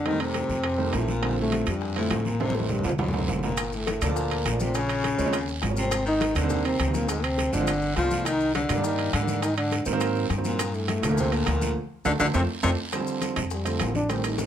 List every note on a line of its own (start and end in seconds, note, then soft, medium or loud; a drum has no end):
0.00 0.44 F2 medium
0.05 0.11 D#3 medium
0.05 0.23 D#3 medium
0.05 0.10 G3 medium
0.05 0.11 A3 medium
0.05 0.11 C4 medium
0.05 0.23 D#4 medium
0.05 high bongo medium
0.05 high conga soft
0.05 high timbale medium
0.05 long guiro medium
0.13 0.54 D#3 medium
0.13 0.54 G3 medium
0.13 0.54 A3 medium
0.13 0.54 C4 medium
0.20 0.96 C3 medium
0.20 0.97 C4 loud
0.20 high conga soft
0.20 high timbale medium
0.34 high bongo medium
0.34 high conga medium
0.34 high timbale medium
0.34 short guiro medium
0.49 0.90 F2 medium
0.49 high bongo soft
0.49 high conga soft
0.49 short guiro medium
0.64 high bongo medium
0.64 high conga soft
0.64 high timbale medium
0.64 long guiro medium
0.78 1.09 D#3 medium
0.78 1.09 G3 medium
0.78 1.09 A3 medium
0.78 1.09 C4 medium
0.78 high bongo soft
0.78 high conga soft
0.93 1.61 A#1 medium
0.93 1.11 A2 medium
0.93 1.13 A3 medium
0.93 high bongo medium
0.93 low bongo medium
0.93 high conga medium
0.93 high timbale medium
0.93 low timbale medium
0.93 short guiro medium
1.08 1.38 A#2 medium
1.08 1.39 A#3 medium
1.08 high conga medium
1.08 short guiro medium
1.22 1.27 D3 medium
1.22 1.28 F3 medium
1.22 1.28 G3 medium
1.22 1.28 C4 medium
1.22 high bongo medium
1.22 high conga soft
1.22 high timbale medium
1.22 long guiro medium
1.30 1.71 D3 medium
1.30 1.71 F3 medium
1.30 1.71 G3 medium
1.30 1.71 C4 medium
1.38 1.70 A2 medium
1.38 1.72 A3 medium
1.38 high conga soft
1.52 high bongo medium
1.52 high conga medium
1.52 high timbale medium
1.52 short guiro medium
1.66 2.08 F2 medium
1.66 1.97 G2 medium
1.66 high bongo soft
1.66 high timbale medium
1.66 short guiro medium
1.70 1.98 G3 medium
1.81 high bongo medium
1.81 high conga soft
1.81 long guiro medium
1.96 2.27 A2 medium
1.96 2.27 D3 medium
1.96 2.27 F3 medium
1.96 2.27 G3 medium
1.96 2.30 A3 medium
1.96 2.27 C4 medium
1.96 high bongo soft
1.96 high conga soft
1.96 high timbale medium
2.10 2.78 A1 medium
2.10 high bongo medium
2.10 low bongo medium
2.10 high conga medium
2.10 high timbale medium
2.10 low timbale medium
2.10 short guiro medium
2.25 2.42 A#2 medium
2.25 2.44 A#3 medium
2.25 high bongo soft
2.25 high conga medium
2.25 short guiro medium
2.40 2.57 C3 medium
2.40 2.45 D#3 medium
2.40 2.45 G3 medium
2.40 2.45 A3 medium
2.40 2.45 C4 medium
2.40 2.58 C4 medium
2.40 high bongo medium
2.40 high conga medium
2.40 high timbale medium
2.40 long guiro medium
2.48 2.89 D#3 medium
2.48 2.89 G3 medium
2.48 2.89 A3 medium
2.48 2.89 C4 medium
2.48 high conga medium
2.55 2.71 A2 medium
2.55 2.73 A3 medium
2.55 high bongo medium
2.59 high conga loud
2.69 2.84 G2 medium
2.69 2.85 G3 medium
2.69 high bongo medium
2.69 low conga medium
2.69 short guiro medium
2.79 low conga medium
2.84 3.25 D2 medium
2.84 2.91 F2 medium
2.84 2.93 F3 medium
2.84 low bongo medium
2.84 low timbale medium
2.84 short guiro medium
2.89 low conga medium
2.98 3.41 F#2 medium
2.98 3.41 F#3 medium
2.98 low bongo medium
2.98 low conga medium
2.98 low timbale loud
2.98 long guiro medium
3.08 low conga medium
3.13 3.44 D3 medium
3.13 3.44 F#3 medium
3.13 3.44 A3 medium
3.13 3.44 C4 medium
3.13 low bongo medium
3.13 low timbale medium
3.19 low conga medium
3.28 3.96 G1 medium
3.28 low bongo medium
3.28 low conga medium
3.28 low timbale medium
3.28 short guiro medium
3.39 low bongo medium
3.39 low conga medium
3.39 short guiro medium
3.44 3.75 A#2 medium
3.44 3.76 A#3 medium
3.44 low timbale medium
3.49 low conga medium
3.57 high bongo medium
3.57 high timbale loud
3.57 long guiro medium
3.57 maracas medium
3.72 4.02 A2 medium
3.72 4.03 A3 medium
3.72 high conga soft
3.72 maracas soft
3.87 high bongo medium
3.87 high conga medium
3.87 high timbale medium
3.87 short guiro medium
3.87 maracas soft
4.01 4.42 D2 medium
4.01 4.62 A#2 medium
4.01 4.07 F3 medium
4.01 4.07 A3 medium
4.01 4.07 A#3 medium
4.01 4.63 A#3 medium
4.01 4.07 D4 medium
4.01 high bongo soft
4.01 low conga medium
4.01 high timbale medium
4.01 short guiro medium
4.01 maracas medium
4.08 4.39 F3 medium
4.08 4.39 A#3 medium
4.08 4.39 D4 medium
4.08 4.40 A4 medium
4.16 high bongo medium
4.16 high conga soft
4.16 long guiro medium
4.16 maracas medium
4.31 high bongo soft
4.31 high conga soft
4.31 high timbale medium
4.31 maracas soft
4.45 5.13 A#1 medium
4.45 high bongo medium
4.45 low bongo medium
4.45 high conga medium
4.45 high timbale medium
4.45 short guiro medium
4.45 maracas soft
4.52 4.74 F3 medium
4.52 4.74 A3 medium
4.52 4.74 A#3 medium
4.52 4.74 D4 medium
4.60 4.77 C3 medium
4.60 4.77 C4 medium
4.60 high bongo soft
4.60 high conga medium
4.60 short guiro medium
4.60 maracas medium
4.74 5.63 C#3 medium
4.74 5.63 C#4 loud
4.74 high bongo medium
4.74 high conga soft
4.74 high timbale medium
4.74 long guiro medium
4.74 maracas medium
4.89 high conga soft
4.89 high timbale medium
4.89 maracas soft
5.04 high bongo medium
5.04 high conga medium
5.04 high timbale medium
5.04 short guiro medium
5.04 maracas soft
5.18 5.59 D#2 medium
5.18 5.23 F3 medium
5.18 5.23 G#3 medium
5.18 5.24 C4 medium
5.18 5.24 C#4 medium
5.18 high bongo soft
5.18 high conga soft
5.18 short guiro medium
5.18 maracas medium
5.26 5.33 F3 medium
5.26 5.33 G#3 loud
5.26 5.33 C4 medium
5.26 5.33 C#4 loud
5.33 high bongo medium
5.33 high conga soft
5.33 high timbale medium
5.33 long guiro medium
5.33 maracas medium
5.47 high bongo soft
5.47 high conga soft
5.47 maracas soft
5.62 6.30 G#1 medium
5.62 high bongo medium
5.62 low bongo medium
5.62 high conga medium
5.62 high timbale medium
5.62 low timbale medium
5.62 short guiro medium
5.62 maracas soft
5.69 5.92 F3 medium
5.69 5.92 G3 medium
5.69 5.92 A#3 medium
5.69 5.92 C#4 medium
5.77 6.04 C3 medium
5.77 6.05 C4 loud
5.77 short guiro medium
5.77 maracas medium
5.91 high bongo medium
5.91 high conga soft
5.91 high timbale medium
5.91 long guiro medium
5.91 maracas medium
6.05 6.37 D#3 medium
6.05 6.38 D#4 loud
6.05 high conga soft
6.05 maracas soft
6.21 high bongo medium
6.21 high conga medium
6.21 high timbale medium
6.21 short guiro medium
6.21 maracas soft
6.35 6.76 D#2 medium
6.35 6.66 D3 medium
6.35 6.41 D#3 medium
6.35 6.41 G3 medium
6.35 6.40 A#3 medium
6.35 6.41 C4 medium
6.35 6.68 D4 medium
6.35 high bongo soft
6.35 low conga medium
6.35 high timbale loud
6.35 short guiro medium
6.35 maracas medium
6.43 6.74 D#3 medium
6.43 6.74 G3 medium
6.43 6.74 A#3 medium
6.43 6.74 C4 loud
6.50 high bongo medium
6.50 high conga soft
6.50 low conga medium
6.50 long guiro medium
6.50 maracas medium
6.65 6.95 C3 medium
6.65 6.97 C4 medium
6.65 high bongo soft
6.65 high timbale medium
6.65 maracas soft
6.80 7.47 D2 medium
6.80 high bongo medium
6.80 low bongo medium
6.80 high conga medium
6.80 high timbale medium
6.80 short guiro medium
6.80 maracas soft
6.87 7.09 D#3 medium
6.87 7.09 G3 medium
6.87 7.09 A#3 medium
6.87 7.09 C4 medium
6.94 7.10 A#2 medium
6.94 7.11 A#3 medium
6.94 high bongo soft
6.94 high conga medium
6.94 short guiro medium
6.94 maracas medium
7.08 7.24 G#2 medium
7.08 7.25 G#3 medium
7.08 high bongo medium
7.08 high timbale medium
7.08 long guiro medium
7.08 maracas medium
7.23 7.53 C3 medium
7.23 7.56 C4 loud
7.23 high conga soft
7.23 high timbale medium
7.23 maracas soft
7.38 high bongo medium
7.38 high conga medium
7.38 high timbale medium
7.38 short guiro medium
7.38 maracas soft
7.52 7.94 G1 medium
7.52 7.96 D3 medium
7.52 7.58 F3 medium
7.52 7.58 G#3 medium
7.52 7.58 C4 medium
7.52 7.58 D4 medium
7.52 7.96 D4 loud
7.52 high bongo soft
7.52 high conga soft
7.52 short guiro medium
7.52 maracas medium
7.60 7.67 F3 medium
7.60 7.67 G#3 medium
7.60 7.67 C4 medium
7.60 7.67 F4 medium
7.67 high bongo medium
7.67 high conga soft
7.67 high timbale medium
7.67 long guiro medium
7.67 maracas medium
7.82 high bongo soft
7.82 high conga soft
7.82 maracas soft
7.96 8.64 C2 medium
7.96 8.27 F3 medium
7.96 8.28 F4 loud
7.96 high bongo medium
7.96 low bongo medium
7.96 high conga medium
7.96 high timbale medium
7.96 low timbale medium
7.96 short guiro medium
7.96 maracas soft
8.04 8.26 F3 medium
8.04 8.26 A3 medium
8.04 8.26 B3 medium
8.04 8.26 D4 medium
8.11 high conga medium
8.11 short guiro medium
8.11 maracas medium
8.25 8.54 D#3 medium
8.25 8.55 D#4 loud
8.25 high bongo medium
8.25 high timbale medium
8.25 long guiro medium
8.25 maracas medium
8.40 high conga soft
8.40 maracas soft
8.54 8.85 D3 medium
8.54 8.86 D4 medium
8.54 high bongo medium
8.54 high conga medium
8.54 high timbale medium
8.54 short guiro medium
8.54 maracas soft
8.69 9.10 G2 medium
8.69 8.75 D#3 medium
8.69 8.75 G3 medium
8.69 8.75 A#3 medium
8.69 8.75 D4 medium
8.69 high bongo soft
8.69 low conga medium
8.69 high timbale medium
8.69 short guiro medium
8.69 maracas medium
8.77 9.08 D#3 medium
8.77 9.08 G3 medium
8.77 9.08 A#3 medium
8.77 9.08 D4 medium
8.84 9.13 D#3 medium
8.84 9.14 D#4 loud
8.84 high bongo medium
8.84 high conga soft
8.84 long guiro medium
8.84 maracas medium
8.99 high bongo soft
8.99 high conga soft
8.99 high timbale medium
8.99 maracas soft
9.13 9.81 G#2 medium
9.13 9.44 D3 medium
9.13 9.45 D4 medium
9.13 high bongo medium
9.13 low bongo medium
9.13 high conga medium
9.13 high timbale medium
9.13 short guiro medium
9.13 maracas soft
9.21 9.43 D#3 medium
9.21 9.43 G3 medium
9.21 9.43 A#3 medium
9.21 9.43 D4 medium
9.28 high bongo soft
9.28 high conga medium
9.28 short guiro medium
9.28 maracas medium
9.42 9.57 D#3 medium
9.42 9.57 D#4 loud
9.42 high bongo medium
9.42 high conga soft
9.42 high timbale medium
9.42 long guiro medium
9.42 maracas medium
9.57 9.84 D3 medium
9.57 9.85 D4 medium
9.57 high conga soft
9.57 high timbale medium
9.57 maracas soft
9.71 high bongo medium
9.71 high conga medium
9.71 high timbale medium
9.71 short guiro medium
9.71 maracas soft
9.86 10.27 G#2 medium
9.86 9.91 D#3 medium
9.86 9.91 F#3 medium
9.86 9.91 A#3 medium
9.86 9.91 C4 medium
9.86 high bongo soft
9.86 high conga soft
9.86 short guiro medium
9.86 maracas medium
9.93 10.24 D#3 loud
9.93 10.24 F#3 medium
9.93 10.24 A#3 loud
9.93 10.24 C4 loud
10.00 high bongo medium
10.00 high conga soft
10.00 high timbale medium
10.00 long guiro medium
10.00 maracas medium
10.15 high bongo soft
10.15 high conga soft
10.15 maracas soft
10.30 10.98 G2 medium
10.30 high bongo medium
10.30 low bongo medium
10.30 high conga medium
10.30 high timbale medium
10.30 short guiro medium
10.30 maracas soft
10.37 10.60 D#3 medium
10.37 10.59 F#3 medium
10.37 10.59 A#3 medium
10.37 10.60 C4 medium
10.45 10.76 A#2 medium
10.45 10.76 A#3 medium
10.45 high conga medium
10.45 short guiro medium
10.45 maracas medium
10.59 high bongo medium
10.59 high conga soft
10.59 high timbale loud
10.59 long guiro medium
10.59 maracas medium
10.74 11.18 A2 medium
10.74 11.18 A3 medium
10.74 high conga soft
10.74 maracas soft
10.88 high bongo medium
10.88 high conga medium
10.88 high timbale medium
10.88 short guiro medium
10.88 maracas soft
11.02 11.44 D2 medium
11.02 11.08 D3 medium
11.02 11.08 F3 medium
11.02 11.08 A3 medium
11.02 11.08 A#3 medium
11.02 high bongo soft
11.02 low conga medium
11.02 high timbale medium
11.02 short guiro medium
11.02 maracas medium
11.10 11.41 D3 medium
11.10 11.41 F3 medium
11.10 11.41 A3 medium
11.10 11.41 A#3 loud
11.17 11.34 C3 medium
11.17 11.36 C4 loud
11.17 high bongo medium
11.17 high conga soft
11.17 low conga medium
11.17 long guiro medium
11.17 maracas medium
11.32 11.76 A#2 medium
11.32 11.77 A#3 medium
11.32 high bongo soft
11.32 high timbale medium
11.32 maracas soft
11.46 11.74 D2 medium
11.46 high bongo medium
11.46 low bongo medium
11.46 high conga medium
11.46 high timbale medium
11.46 low timbale medium
11.46 short guiro medium
11.46 maracas soft
11.54 11.76 D3 medium
11.54 11.76 F3 medium
11.54 11.76 A3 medium
11.54 11.76 A#3 medium
11.61 high bongo soft
11.61 high conga medium
11.61 short guiro medium
11.61 maracas medium
12.05 12.16 D2 medium
12.05 12.12 D3 medium
12.05 12.15 D3 medium
12.05 12.15 F#3 medium
12.05 12.15 A3 medium
12.05 12.13 D4 medium
12.05 low bongo loud
12.05 high conga medium
12.05 high timbale loud
12.05 long guiro medium
12.05 maracas medium
12.19 12.31 D2 medium
12.19 12.29 D3 medium
12.19 12.27 D3 loud
12.19 12.29 F#3 loud
12.19 12.29 A3 loud
12.19 12.27 D4 medium
12.19 low bongo medium
12.19 high conga medium
12.19 high timbale loud
12.19 long guiro loud
12.19 maracas loud
12.34 12.46 F2 loud
12.34 12.41 C3 medium
12.34 12.44 F3 loud
12.34 12.43 A3 loud
12.34 12.43 C4 loud
12.34 12.42 C4 loud
12.34 low bongo medium
12.34 high conga loud
12.34 high timbale medium
12.34 long guiro loud
12.34 maracas loud
12.63 12.75 F2 medium
12.63 12.70 C3 loud
12.63 12.73 F3 medium
12.63 12.73 A3 loud
12.63 12.73 C4 loud
12.63 12.71 C4 medium
12.63 low bongo medium
12.63 high conga medium
12.63 high timbale loud
12.63 long guiro loud
12.63 maracas medium
12.92 12.98 D3 medium
12.92 12.98 F3 medium
12.92 12.98 G3 medium
12.92 12.98 C4 loud
12.92 high bongo medium
12.92 high conga soft
12.92 high timbale medium
12.92 long guiro medium
12.92 maracas medium
13.00 13.41 D3 medium
13.00 13.41 F3 medium
13.00 13.41 G3 medium
13.00 13.41 C4 medium
13.07 high bongo soft
13.07 high conga soft
13.07 maracas medium
13.21 high bongo medium
13.21 high conga medium
13.21 high timbale medium
13.21 short guiro medium
13.21 maracas medium
13.36 13.77 F2 medium
13.36 high conga medium
13.36 low conga medium
13.36 high timbale medium
13.36 short guiro medium
13.36 maracas soft
13.50 13.68 G3 medium
13.50 high bongo medium
13.50 high conga soft
13.50 long guiro medium
13.50 maracas medium
13.65 13.96 D3 medium
13.65 13.96 F3 medium
13.65 13.96 G3 medium
13.65 13.83 A3 medium
13.65 13.96 C4 medium
13.65 high bongo soft
13.65 high conga soft
13.65 high timbale medium
13.65 maracas medium
13.80 14.46 A1 medium
13.80 13.95 A#3 medium
13.80 high bongo medium
13.80 low bongo medium
13.80 high conga medium
13.80 high timbale loud
13.80 low timbale medium
13.80 short guiro medium
13.80 maracas medium
13.95 14.13 D4 loud
13.95 high bongo soft
13.95 high conga medium
13.95 short guiro medium
13.95 maracas soft
14.09 14.14 D#3 medium
14.09 14.15 G3 medium
14.09 14.14 A3 medium
14.09 14.14 C4 medium
14.09 14.25 C4 medium
14.09 high bongo medium
14.09 high timbale medium
14.09 long guiro medium
14.09 maracas medium
14.16 14.46 D#3 medium
14.16 14.46 G3 medium
14.16 14.46 A3 medium
14.16 14.46 C4 medium
14.24 14.43 D#3 medium
14.24 high bongo soft
14.24 high conga soft
14.24 high timbale medium
14.24 maracas medium
14.38 14.46 G3 medium
14.38 high bongo medium
14.38 high conga medium
14.38 short guiro medium
14.38 maracas medium